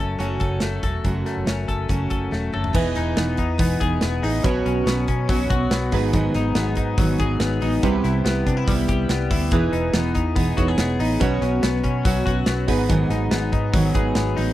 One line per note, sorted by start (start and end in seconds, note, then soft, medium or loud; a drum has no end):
0.00 0.16 F#1 medium
0.00 1.04 F#2 medium
0.00 0.18 F#3 soft
0.00 0.18 A3 soft
0.00 0.61 A3 medium
0.00 0.18 C#4 medium
0.00 0.18 C#4 soft
0.00 0.19 F#4 medium
0.00 0.39 A4 medium
0.18 0.37 F#1 medium
0.18 0.62 F#2 medium
0.18 0.62 C#3 medium
0.18 0.61 F#3 medium
0.18 0.61 A3 medium
0.18 0.62 C#4 medium
0.18 0.62 F#4 medium
0.18 closed hi-hat medium
0.40 0.58 F#1 medium
0.40 0.82 A4 medium
0.40 kick medium
0.40 closed hi-hat medium
0.60 0.80 F#1 medium
0.60 0.83 F#3 medium
0.60 0.83 A3 medium
0.60 0.82 C#4 medium
0.60 0.81 F#4 medium
0.60 snare medium
0.60 closed hi-hat medium
0.83 1.01 E1 medium
0.83 1.03 F#3 soft
0.83 1.04 A3 medium
0.83 1.04 C#4 medium
0.83 1.04 F#4 medium
0.83 1.67 A4 medium
0.83 kick medium
0.83 closed hi-hat medium
1.04 1.22 F#1 medium
1.04 1.47 F#2 medium
1.04 1.47 C#3 medium
1.04 1.44 F#3 medium
1.04 1.45 A3 medium
1.04 1.46 C#4 medium
1.04 1.47 F#4 medium
1.04 kick medium
1.04 closed hi-hat medium
1.26 2.31 A3 medium
1.26 snare soft
1.26 closed hi-hat medium
1.37 1.46 F#1 medium
1.45 1.65 F#1 medium
1.45 1.88 F#3 medium
1.45 1.88 A3 medium
1.45 1.89 C#4 medium
1.45 1.89 F#4 medium
1.45 snare loud
1.45 closed hi-hat medium
1.68 1.86 F#1 medium
1.68 2.09 A4 medium
1.68 kick medium
1.68 closed hi-hat medium
1.88 2.07 F#1 medium
1.88 2.32 F#2 medium
1.88 2.32 C#3 medium
1.88 2.30 F#3 medium
1.88 2.31 A3 medium
1.88 2.32 C#4 medium
1.88 2.33 F#4 medium
1.88 kick medium
1.88 closed hi-hat medium
2.10 2.28 F#1 medium
2.10 2.52 A4 medium
2.10 kick medium
2.10 closed hi-hat medium
2.31 2.50 E1 medium
2.31 2.53 F#3 medium
2.31 2.53 A3 medium
2.31 2.52 C#4 medium
2.31 2.51 F#4 medium
2.31 snare soft
2.52 2.72 F#1 medium
2.52 2.73 F#3 soft
2.52 2.73 A3 soft
2.52 2.74 C#4 medium
2.52 2.74 F#4 medium
2.52 2.79 A4 medium
2.52 mid tom medium
2.64 floor tom medium
2.73 2.92 E1 loud
2.73 3.15 E3 medium
2.73 3.16 B3 medium
2.73 3.16 D#4 medium
2.73 4.41 E4 medium
2.73 3.17 G#4 loud
2.73 4.41 G#4 medium
2.73 4.42 B4 medium
2.73 4.42 D#5 medium
2.73 kick loud
2.73 crash medium
2.95 3.14 E1 loud
2.95 3.37 D#4 medium
2.95 snare soft
2.95 hi-hat pedal medium
2.95 open hi-hat medium
3.16 3.35 E1 loud
3.16 3.57 E3 medium
3.16 3.58 B3 medium
3.16 3.58 D#4 medium
3.16 3.59 G#4 medium
3.16 snare loud
3.16 hi-hat pedal medium
3.16 open hi-hat medium
3.37 3.60 E2 medium
3.37 4.22 D#4 medium
3.37 kick medium
3.37 hi-hat pedal medium
3.37 open hi-hat medium
3.58 3.77 E1 loud
3.58 3.80 E3 medium
3.58 3.81 B3 medium
3.58 3.81 D#4 loud
3.58 3.79 G#4 medium
3.58 kick loud
3.58 hi-hat pedal medium
3.58 open hi-hat loud
3.81 3.98 E1 medium
3.81 4.24 B3 soft
3.81 4.23 D#4 medium
3.81 4.21 G#4 medium
3.81 kick medium
3.81 hi-hat pedal medium
3.81 open hi-hat medium
4.01 4.20 E1 loud
4.01 4.69 B3 medium
4.01 snare loud
4.01 hi-hat pedal medium
4.01 open hi-hat medium
4.22 4.41 A1 medium
4.22 4.44 B3 medium
4.22 4.45 D#4 medium
4.22 4.44 G#4 medium
4.22 hi-hat pedal medium
4.22 open hi-hat medium
4.43 4.62 B1 loud
4.43 4.87 B2 medium
4.43 4.85 F#3 medium
4.43 4.86 B3 loud
4.43 5.89 C#4 medium
4.43 4.86 C#4 loud
4.43 5.90 F#4 medium
4.43 4.88 F#4 loud
4.43 5.90 B4 medium
4.43 5.90 C#5 medium
4.43 kick loud
4.43 hi-hat pedal medium
4.43 open hi-hat medium
4.66 4.83 B1 loud
4.66 5.07 C#4 medium
4.66 hi-hat pedal medium
4.66 open hi-hat medium
4.86 5.04 B1 loud
4.86 5.29 F#3 medium
4.86 5.30 B3 medium
4.86 5.29 C#4 medium
4.86 5.30 F#4 medium
4.86 snare loud
4.86 hi-hat pedal medium
4.86 open hi-hat medium
5.08 5.25 B2 loud
5.08 5.97 C#4 medium
5.08 kick medium
5.08 hi-hat pedal medium
5.08 open hi-hat medium
5.29 5.46 B1 loud
5.29 5.50 B2 medium
5.29 5.51 F#3 medium
5.29 5.51 B3 medium
5.29 5.50 C#4 loud
5.29 5.48 F#4 loud
5.29 kick loud
5.29 hi-hat pedal medium
5.29 open hi-hat loud
5.49 5.68 B1 medium
5.49 5.93 B3 soft
5.49 5.92 C#4 medium
5.49 5.91 F#4 medium
5.49 kick loud
5.49 hi-hat pedal medium
5.49 open hi-hat medium
5.71 5.89 B1 loud
5.71 6.56 B3 medium
5.71 snare loud
5.71 hi-hat pedal medium
5.71 open hi-hat medium
5.91 6.27 G#1 loud
5.91 6.13 G#2 medium
5.91 6.13 F#3 medium
5.91 6.13 B3 medium
5.91 6.13 D#4 medium
5.91 7.79 D#4 medium
5.91 7.80 F#4 medium
5.91 6.13 G#4 medium
5.91 7.80 G#4 medium
5.91 7.80 B4 medium
5.91 kick medium
5.91 hi-hat pedal medium
5.91 open hi-hat medium
6.13 6.35 G#2 medium
6.13 6.35 D#3 medium
6.13 6.35 F#3 medium
6.13 6.35 B3 loud
6.13 6.34 D#4 medium
6.13 6.33 G#4 loud
6.13 kick loud
6.13 hi-hat pedal medium
6.13 open hi-hat loud
6.34 6.52 G#1 loud
6.34 6.54 F#3 soft
6.34 6.55 B3 soft
6.34 6.55 D#4 soft
6.34 6.56 G#4 medium
6.34 snare soft
6.34 hi-hat pedal medium
6.34 open hi-hat medium
6.55 6.73 G#1 loud
6.55 6.97 F#3 medium
6.55 6.99 B3 medium
6.55 6.98 D#4 medium
6.55 6.98 G#4 medium
6.55 snare loud
6.55 hi-hat pedal medium
6.55 open hi-hat medium
6.75 6.94 G#2 loud
6.75 7.61 D#4 medium
6.75 kick medium
6.75 hi-hat pedal medium
6.75 open hi-hat medium
6.97 7.15 G#1 medium
6.97 7.19 G#2 medium
6.97 7.19 D#3 medium
6.97 7.20 F#3 medium
6.97 7.19 B3 loud
6.97 7.19 D#4 loud
6.97 7.18 G#4 medium
6.97 kick loud
6.97 hi-hat pedal medium
6.97 open hi-hat loud
7.18 7.37 G#1 loud
7.18 7.62 F#3 medium
7.18 7.62 B3 medium
7.18 7.60 D#4 medium
7.18 7.59 G#4 medium
7.18 kick medium
7.18 hi-hat pedal medium
7.18 open hi-hat medium
7.40 7.58 G#1 loud
7.40 8.24 B3 medium
7.40 snare loud
7.40 hi-hat pedal medium
7.40 open hi-hat medium
7.60 7.79 A1 medium
7.60 7.83 F#3 soft
7.60 7.82 B3 medium
7.60 7.83 D#4 medium
7.60 7.82 G#4 medium
7.60 hi-hat pedal medium
7.60 open hi-hat medium
7.82 8.00 C2 loud
7.82 8.25 C3 medium
7.82 8.24 G3 loud
7.82 8.26 B3 medium
7.82 9.49 C4 medium
7.82 9.49 E4 medium
7.82 8.27 E4 loud
7.82 8.26 G4 loud
7.82 9.49 G4 medium
7.82 9.49 B4 medium
7.82 kick loud
7.82 hi-hat pedal medium
7.82 open hi-hat medium
8.04 8.22 C2 loud
8.04 8.46 E4 medium
8.04 snare soft
8.04 hi-hat pedal medium
8.04 open hi-hat medium
8.25 8.43 C2 loud
8.25 8.67 G3 medium
8.25 8.68 B3 medium
8.25 8.68 E4 medium
8.25 8.68 G4 medium
8.25 snare loud
8.25 hi-hat pedal medium
8.25 open hi-hat medium
8.47 8.64 C3 loud
8.47 8.57 D4 medium
8.47 kick medium
8.47 hi-hat pedal medium
8.47 open hi-hat medium
8.57 9.29 E4 medium
8.68 8.85 C2 medium
8.68 8.89 C3 medium
8.68 8.89 G3 medium
8.68 8.89 B3 loud
8.68 8.89 E4 medium
8.68 8.87 G4 medium
8.68 kick loud
8.68 hi-hat pedal medium
8.68 open hi-hat loud
8.88 9.06 C2 loud
8.88 9.33 B3 medium
8.88 9.31 E4 medium
8.88 9.30 G4 medium
8.88 kick loud
8.88 hi-hat pedal medium
8.88 open hi-hat medium
9.09 9.27 C2 loud
9.09 9.94 B3 medium
9.09 snare loud
9.09 hi-hat pedal medium
9.09 open hi-hat medium
9.30 9.48 D2 medium
9.30 9.51 B3 medium
9.30 9.52 E4 medium
9.30 9.52 G4 medium
9.30 kick loud
9.30 hi-hat pedal medium
9.30 open hi-hat medium
9.51 9.69 E1 loud
9.51 9.92 E3 medium
9.51 9.94 B3 loud
9.51 10.55 D#4 medium
9.51 9.95 D#4 medium
9.51 10.56 E4 medium
9.51 10.56 G#4 medium
9.51 9.95 G#4 medium
9.51 10.56 B4 medium
9.51 kick loud
9.51 hi-hat pedal medium
9.51 open hi-hat loud
9.73 9.90 E1 loud
9.73 10.13 D#4 medium
9.73 hi-hat pedal medium
9.73 open hi-hat medium
9.93 10.11 E1 loud
9.93 10.35 E3 medium
9.93 10.36 B3 medium
9.93 10.36 D#4 medium
9.93 10.37 G#4 medium
9.93 snare loud
9.93 hi-hat pedal medium
9.93 open hi-hat medium
10.15 10.37 E2 medium
10.15 10.99 D#4 medium
10.15 kick medium
10.15 hi-hat pedal medium
10.15 open hi-hat medium
10.36 10.53 E1 loud
10.36 10.57 E3 medium
10.36 10.58 B3 loud
10.36 10.57 D#4 medium
10.36 10.55 G#4 medium
10.36 kick loud
10.36 hi-hat pedal medium
10.36 open hi-hat loud
10.57 10.75 E1 loud
10.57 11.01 B3 soft
10.57 11.21 D#4 medium
10.57 11.00 D#4 medium
10.57 11.21 E4 medium
10.57 10.68 F#4 medium
10.57 10.98 G#4 medium
10.57 11.21 G#4 medium
10.57 11.21 C#5 medium
10.57 kick medium
10.57 hi-hat pedal medium
10.57 open hi-hat medium
10.68 11.25 G#4 medium
10.78 10.96 E1 loud
10.78 11.45 B3 medium
10.78 snare loud
10.78 hi-hat pedal medium
10.78 open hi-hat medium
10.99 11.17 A1 medium
10.99 11.20 B3 medium
10.99 11.21 D#4 medium
10.99 11.21 G#4 medium
10.99 hi-hat pedal medium
10.99 open hi-hat medium
11.20 11.38 B1 loud
11.20 11.63 B2 medium
11.20 11.62 F#3 medium
11.20 11.63 B3 loud
11.20 12.65 C#4 medium
11.20 11.63 C#4 loud
11.20 12.66 F#4 medium
11.20 11.65 F#4 loud
11.20 12.66 B4 medium
11.20 12.66 C#5 medium
11.20 kick loud
11.20 hi-hat pedal medium
11.20 open hi-hat loud
11.42 11.59 B1 loud
11.42 11.82 C#4 medium
11.42 snare soft
11.42 hi-hat pedal medium
11.42 open hi-hat medium
11.62 11.80 B1 loud
11.62 12.05 F#3 medium
11.62 12.05 B3 medium
11.62 12.05 C#4 medium
11.62 12.06 F#4 medium
11.62 snare loud
11.62 hi-hat pedal medium
11.62 open hi-hat medium
11.84 12.01 B2 medium
11.84 12.72 C#4 medium
11.84 kick medium
11.84 hi-hat pedal medium
11.84 open hi-hat medium
12.05 12.23 B1 loud
12.05 12.26 B2 medium
12.05 12.26 F#3 medium
12.05 12.27 B3 loud
12.05 12.26 C#4 medium
12.05 12.25 F#4 loud
12.05 kick loud
12.05 hi-hat pedal medium
12.05 open hi-hat loud
12.26 12.44 B1 medium
12.26 12.70 B3 medium
12.26 12.69 C#4 medium
12.26 12.68 F#4 medium
12.26 kick medium
12.26 hi-hat pedal medium
12.26 open hi-hat medium
12.46 12.65 B1 loud
12.46 13.31 B3 medium
12.46 snare loud
12.46 hi-hat pedal medium
12.46 open hi-hat medium
12.67 13.03 G#1 loud
12.67 12.88 G#2 medium
12.67 12.88 F#3 medium
12.67 12.89 B3 medium
12.67 13.92 D#4 medium
12.67 12.89 D#4 medium
12.67 13.92 F#4 medium
12.67 13.92 G#4 medium
12.67 12.90 G#4 medium
12.67 13.93 B4 medium
12.67 kick loud
12.67 hi-hat pedal medium
12.67 open hi-hat medium
12.89 13.10 G#2 medium
12.89 13.10 D#3 medium
12.89 13.11 F#3 loud
12.89 13.10 B3 medium
12.89 13.09 D#4 loud
12.89 13.09 G#4 loud
12.89 kick loud
12.89 hi-hat pedal medium
12.89 open hi-hat medium
13.09 13.27 G#1 loud
13.09 13.30 F#3 soft
13.09 13.32 B3 soft
13.09 13.32 D#4 soft
13.09 13.31 G#4 medium
13.09 snare soft
13.09 hi-hat pedal medium
13.09 open hi-hat medium
13.31 13.49 G#1 loud
13.31 13.73 F#3 medium
13.31 13.74 B3 medium
13.31 13.74 D#4 medium
13.31 13.74 G#4 medium
13.31 snare loud
13.31 hi-hat pedal medium
13.31 open hi-hat medium
13.52 13.70 G#2 loud
13.52 14.35 D#4 medium
13.52 kick medium
13.52 hi-hat pedal medium
13.52 open hi-hat medium
13.73 13.91 G#1 loud
13.73 13.95 G#2 medium
13.73 13.95 D#3 loud
13.73 13.95 F#3 medium
13.73 13.95 B3 loud
13.73 13.94 D#4 loud
13.73 13.93 G#4 medium
13.73 kick loud
13.73 hi-hat pedal medium
13.73 open hi-hat loud
13.94 14.12 G#1 loud
13.94 14.38 F#3 medium
13.94 14.38 B3 medium
13.94 14.53 D#4 medium
13.94 14.36 D#4 medium
13.94 14.53 F#4 medium
13.94 14.36 G#4 medium
13.94 14.53 G#4 medium
13.94 14.53 B4 medium
13.94 kick loud
13.94 hi-hat pedal medium
13.94 open hi-hat medium
14.15 14.33 G#1 loud
14.15 14.53 B3 medium
14.15 snare loud
14.15 hi-hat pedal medium
14.15 open hi-hat medium
14.37 14.53 A1 medium
14.37 14.53 F#3 medium
14.37 14.53 B3 medium
14.37 14.53 D#4 medium
14.37 14.53 G#4 medium
14.37 hi-hat pedal medium
14.37 open hi-hat medium